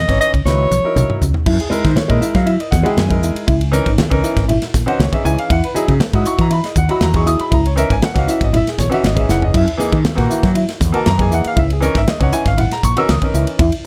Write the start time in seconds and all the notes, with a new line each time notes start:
Already playing: D#5
0.08 G#1 E3 C#4 D#4 C#5, kick, snare, ride
0.21 D#5, muted fretless electric bass stroke, hi-hat pedal
0.34 C#2, kick, ride
0.45 C#2 F#3 D#4 E4 B4 C#5, snare, hi-hat pedal, muted conga, high conga
0.71 B1, hi-hat pedal, high tom
0.84 F#3 D#4 E4 A#4
0.96 B1, hi-hat pedal, mid tom, high conga
1.10 mid tom
1.21 C#2, floor tom, hi-hat pedal, muted conga
1.34 floor tom
1.46 F#2 E4, kick, crash, muted conga
1.60 G#4, ride
1.70 G#3 D#4 E4 A#4, muted fretless electric bass stroke, hi-hat pedal, muted conga
1.84 D#3 D#4, kick, snare, ride
1.96 E4 A#4 C#5, muted fretless electric bass stroke, snare, ride, high conga
2.08 A#2 G#3 D#4 E4 A#4 D#5, kick, ride
2.21 E4 E5, muted fretless electric bass stroke, hi-hat pedal
2.35 F#3 F5, kick, snare, ride
2.46 E4 E5, ride, muted conga
2.59 E4 A#4 D#5, ride
2.71 E2 F#5, kick, snare, hi-hat pedal, high conga
2.83 G#3 D#4 E4 F#4 G#4 G5, ride
2.97 F#2 G#5, snare, ride, muted conga, high conga
3.08 G#3 D#4 E4 A#4, kick, ride
3.22 E2 E4, hi-hat pedal
3.35 muted fretless electric bass stroke, ride
3.47 C#2 E4, kick, ride, muted conga
3.61 ride
3.72 E3 C#4 D#4 A#4, hi-hat pedal, muted conga
3.86 G#1 D#4, kick, ride
3.98 D#4 G#4, muted fretless electric bass stroke, snare, ride, high conga
4.10 C#2 E3 C#4 D#4 A#4, kick, ride
4.23 E4, hi-hat pedal
4.36 G#1, kick, snare, ride
4.49 E4, ride, muted conga, low conga
4.61 D#4 F#4, snare, ride
4.74 A#1, kick, snare, hi-hat pedal, high conga
4.86 E3 C#4 D#4 F#4 C5, ride
4.99 C#2 C#5, snare, ride, muted conga, high conga
5.12 E3 C#4 D#4 G#4 E5, kick, ride
5.24 C#2 E4 G#5, hi-hat pedal
5.38 F5, ride
5.50 E2 E4 F#5, kick, ride, muted conga
5.64 B4, ride
5.74 F#3 D#4 E4 G#4, muted fretless electric bass stroke, hi-hat pedal, muted conga
5.88 C#3 D#4, kick, ride
6.00 B4, muted fretless electric bass stroke, snare, ride, high conga
6.13 G#2 F#3 D#4 E4 F#4 D#6, kick, ride
6.25 E4 C#6, muted fretless electric bass stroke, hi-hat pedal
6.39 E3 A#5, kick, ride
6.50 E4 B5, ride, muted conga
6.63 E4 G#4 D#5, snare, ride
6.76 D#2 F#5, kick, hi-hat pedal, high conga
6.89 F#3 D#4 E4 F#4 B5, ride
7.01 E2 A#5, snare, ride, muted conga, high conga
7.14 F#3 D#4 E4 G#4 C#6, kick, ride
7.26 D#2 E4 D#6, hi-hat pedal
7.39 B5, ride
7.51 C#2 E4 A#5, kick, ride, muted conga
7.66 C#5, ride
7.76 E3 C#4 D#4 A#4 E5, hi-hat pedal, muted conga
7.90 G#1 D#4 G#5, kick, ride
8.02 D#4 A#4 F#5, muted fretless electric bass stroke, snare, ride, high conga
8.14 C#2 E3 C#4 D#4 F#4, kick, snare, ride
8.19 F5
8.28 E4 E5, hi-hat pedal
8.41 G#1 D#5, kick, ride
8.53 E4 E5, ride, muted conga, low conga
8.64 D#4 A#4, snare, ride
8.69 G#4
8.78 A#1 C#5, kick, snare, hi-hat pedal, high conga
8.90 E3 C#4 D#4 F#4, ride
8.94 E5
9.04 G#1 D#5, snare, ride, muted conga, high conga
9.15 E3 C#4 D#4 G#4, kick, ride
9.19 E5
9.29 F#1 E4 F#5, snare, hi-hat pedal
9.42 D#5, floor tom
9.54 F#2 E4 E5, kick, crash, ride, muted conga
9.68 ride
9.78 E3 A#3 D#4 G#4, muted fretless electric bass stroke, hi-hat pedal, muted conga
9.92 D#3 D#4, kick, ride
10.03 D#4 G#4, muted fretless electric bass stroke, snare, ride, high conga
10.15 A#2 D#3 E3 A#3 F#4, kick, snare, ride
10.30 E4, muted fretless electric bass stroke, hi-hat pedal
10.43 F#3, kick, snare, ride
10.55 E4, ride, muted conga
10.66 D#4 F#4, snare, ride
10.80 E2, kick, snare, hi-hat pedal, high conga
10.93 E3 A#3 D#4 F#4 A#4 A5, ride
11.06 F#2 A#5, snare, ride, muted conga, high conga
11.18 E3 A#3 D#4 G#4 G#5, kick, ride
11.31 E2 E4 F#5, hi-hat pedal
11.44 F5, muted fretless electric bass stroke, ride
11.56 C#2 E4 E5, kick, ride, muted conga
11.70 G#4, ride
11.81 E3 C#4 D#4 A#4 C#5, hi-hat pedal, muted conga
11.95 G#1 D#4 E5, kick, snare, ride
12.07 D#4 G#4 D#5, snare, ride, high conga
12.20 C#2 E3 C#4 D#4 C#5 F#5, kick, ride
12.32 E4 G#5, hi-hat pedal
12.46 G#1 F5, kick, snare, ride
12.58 E4 F#5, ride, muted conga, low conga
12.71 D#4 G#4 A#5, snare, ride
12.83 A#1 C#6, kick, hi-hat pedal
12.97 E3 C#4 D#4 F#4 A#4 E6, ride
13.09 C#2 D#6, snare, ride, muted conga, high conga
13.22 E3 C#4 D#4 A#4, muted fretless electric bass stroke, kick, ride
13.34 C#2 E4, hi-hat pedal
13.47 ride
13.59 E2 E4, kick, ride
13.72 ride